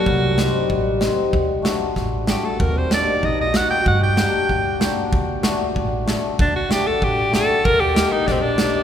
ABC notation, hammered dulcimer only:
X:1
M:2/4
L:1/16
Q:1/4=95
K:none
V:1 name="Hammered dulcimer"
z2 [G,C_E] z3 [G,CE] z | z2 [A,D^F] z3 [A,DF] z | z2 [_B,_EG] z3 [B,E_B] z | z2 [_B,DG] z3 [B,D^F] z |
z2 [A,D^F] z3 [A,DA] z | z2 [A,D^F] z3 [A,DF] z | z2 [_B,_EG] z3 [B,EG] z |]